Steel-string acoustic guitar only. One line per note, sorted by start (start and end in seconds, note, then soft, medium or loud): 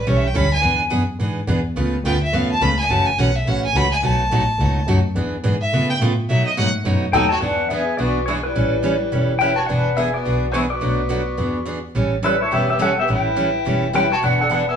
0.07 0.26 E3 medium
0.07 0.26 G3 medium
0.07 0.26 C#4 medium
0.07 0.26 E4 medium
0.07 0.26 A4 medium
0.34 0.46 E3 medium
0.34 0.46 G3 medium
0.34 0.46 C#4 medium
0.34 0.46 E4 medium
0.34 0.46 A4 medium
0.61 0.82 E3 medium
0.61 0.82 B3 medium
0.61 0.82 D4 medium
0.61 0.82 G#4 medium
0.90 1.02 E3 medium
0.90 1.02 B3 medium
0.90 1.02 D4 medium
0.90 1.02 G#4 medium
1.20 1.39 E3 medium
1.20 1.39 B3 medium
1.20 1.40 D4 medium
1.20 1.40 G#4 medium
1.47 1.59 E3 medium
1.47 1.59 B3 medium
1.47 1.59 D4 medium
1.47 1.59 G#4 medium
1.76 1.96 C#3 medium
1.76 1.96 A3 medium
1.76 1.96 B3 medium
1.76 1.96 F4 medium
1.76 1.96 B4 medium
2.05 2.16 C#3 medium
2.05 2.16 A3 medium
2.05 2.16 B3 medium
2.05 2.16 F4 medium
2.05 2.16 B4 medium
2.33 2.52 C#3 medium
2.33 2.52 A3 medium
2.33 2.53 B3 medium
2.33 2.53 F4 medium
2.33 2.53 B4 medium
2.61 2.72 C#3 medium
2.61 2.72 A3 medium
2.61 2.72 B3 medium
2.61 2.73 F4 medium
2.61 2.73 B4 medium
2.90 3.09 C#3 medium
2.90 3.09 E3 medium
2.90 3.09 A3 medium
2.90 3.09 C#4 medium
2.90 3.09 F#4 medium
3.19 3.29 C#3 medium
3.19 3.29 E3 medium
3.19 3.29 A3 medium
3.19 3.30 C#4 medium
3.19 3.30 F#4 medium
3.47 3.66 C#3 medium
3.47 3.66 E3 medium
3.47 3.66 A3 medium
3.47 3.66 C#4 medium
3.47 3.66 F#4 medium
3.75 3.86 C#3 medium
3.75 3.86 E3 medium
3.75 3.86 A3 medium
3.75 3.86 C#4 medium
3.75 3.86 F#4 medium
4.02 4.22 B2 medium
4.02 4.22 F#3 medium
4.02 4.22 A3 medium
4.02 4.22 D#4 medium
4.02 4.22 F#4 medium
4.31 4.42 B2 medium
4.31 4.42 F#3 medium
4.31 4.42 A3 medium
4.31 4.42 D#4 medium
4.31 4.43 F#4 medium
4.60 4.79 B2 medium
4.60 4.79 F#3 medium
4.60 4.79 A3 medium
4.60 4.79 D#4 medium
4.60 4.79 F#4 medium
4.88 4.98 B2 medium
4.88 4.98 F#3 medium
4.88 4.99 A3 medium
4.88 4.99 D#4 medium
4.88 4.99 F#4 medium
5.16 5.35 E3 medium
5.16 5.35 B3 medium
5.16 5.35 D4 medium
5.16 5.36 G#4 medium
5.44 5.55 E3 medium
5.44 5.55 B3 medium
5.44 5.55 D4 medium
5.44 5.55 G#4 medium
5.73 5.92 C#3 medium
5.73 5.92 A3 medium
5.73 5.92 B3 medium
5.73 5.92 F4 medium
5.73 5.92 B4 medium
6.01 6.12 C#3 medium
6.01 6.12 A3 medium
6.01 6.12 B3 medium
6.01 6.12 F4 medium
6.01 6.12 B4 medium
6.29 6.48 B2 medium
6.29 6.49 F#3 medium
6.29 6.49 A3 medium
6.29 6.49 D#4 medium
6.29 6.49 F#4 medium
6.57 6.68 B2 medium
6.57 6.68 F#3 medium
6.57 6.68 A3 medium
6.57 6.68 D#4 medium
6.57 6.68 F#4 medium
6.85 7.05 B2 medium
6.85 7.05 F#3 medium
6.85 7.05 A3 medium
6.85 7.05 D#4 medium
6.85 7.05 F#4 medium
7.13 7.24 B2 medium
7.13 7.24 F#3 medium
7.13 7.25 A3 medium
7.13 7.25 D#4 medium
7.13 7.25 F#4 medium
7.42 7.61 E3 medium
7.42 7.61 B3 medium
7.42 7.62 D4 medium
7.42 7.62 G#4 medium
7.70 7.81 E3 medium
7.70 7.81 B3 medium
7.70 7.82 D4 medium
7.70 7.82 G#4 medium
7.98 8.18 E3 medium
7.98 8.18 B3 medium
7.98 8.18 D4 medium
7.98 8.18 G#4 medium
8.28 8.38 E3 medium
8.28 8.38 B3 medium
8.28 8.39 D4 medium
8.28 8.39 G#4 medium
8.55 8.75 E3 medium
8.55 8.75 G3 medium
8.55 8.75 C#4 medium
8.55 8.75 E4 medium
8.55 8.75 A4 medium
8.83 8.94 E3 medium
8.83 8.94 G3 medium
8.83 8.95 C#4 medium
8.83 8.95 E4 medium
8.83 8.95 A4 medium
9.12 9.31 E3 medium
9.12 9.31 G3 medium
9.12 9.32 C#4 medium
9.12 9.32 E4 medium
9.12 9.32 A4 medium
9.41 9.51 E3 medium
9.41 9.52 G3 medium
9.41 9.52 C#4 medium
9.41 9.52 E4 medium
9.41 9.52 A4 medium
9.69 9.88 E3 medium
9.69 9.88 B3 medium
9.69 9.89 D4 medium
9.69 9.89 G#4 medium
9.97 10.08 E3 medium
9.97 10.08 B3 medium
9.97 10.08 D4 medium
9.97 10.08 G#4 medium
10.25 10.45 E3 medium
10.25 10.45 B3 medium
10.25 10.45 D4 medium
10.25 10.45 G#4 medium
10.54 10.65 E3 medium
10.54 10.65 B3 medium
10.54 10.65 D4 medium
10.54 10.65 G#4 medium
10.81 11.01 B2 medium
10.81 11.01 F#3 medium
10.81 11.01 A3 medium
10.81 11.01 D4 medium
10.81 11.02 F#4 medium
11.09 11.21 B2 medium
11.09 11.21 F#3 medium
11.09 11.21 A3 medium
11.09 11.21 D4 medium
11.09 11.21 F#4 medium
11.37 11.58 E3 medium
11.37 11.58 B3 medium
11.37 11.58 D4 medium
11.37 11.58 G#4 medium
11.65 11.77 E3 medium
11.65 11.78 B3 medium
11.65 11.78 D4 medium
11.65 11.78 G#4 medium
11.95 12.15 E3 medium
11.95 12.15 G3 medium
11.95 12.15 C#4 medium
11.95 12.15 E4 medium
11.95 12.15 A4 medium
12.23 12.34 E3 medium
12.23 12.34 G3 medium
12.23 12.34 C#4 medium
12.23 12.35 E4 medium
12.23 12.35 A4 medium
12.51 12.71 E3 medium
12.51 12.71 G3 medium
12.51 12.71 C#4 medium
12.51 12.72 E4 medium
12.51 12.71 A4 medium
12.79 12.90 E3 medium
12.79 12.91 G3 medium
12.79 12.91 C#4 medium
12.79 12.91 E4 medium
12.79 12.91 A4 medium
13.08 13.28 E3 soft
13.08 13.28 G3 medium
13.08 13.28 C#4 medium
13.08 13.28 E4 medium
13.08 13.28 A4 medium
13.36 13.48 E3 medium
13.36 13.48 G3 medium
13.36 13.48 C#4 medium
13.36 13.48 E4 medium
13.36 13.48 A4 medium
13.65 13.85 E3 medium
13.65 13.85 G3 medium
13.65 13.85 C#4 medium
13.65 13.85 E4 medium
13.65 13.86 A4 medium
13.93 14.04 E3 medium
13.93 14.05 G3 medium
13.93 14.05 C#4 medium
13.93 14.05 E4 medium
13.93 14.05 A4 medium
14.22 14.42 E3 medium
14.22 14.42 B3 medium
14.22 14.42 D4 medium
14.22 14.42 G#4 medium
14.50 14.61 E3 medium
14.50 14.61 B3 medium
14.50 14.61 D4 medium
14.50 14.61 G#4 medium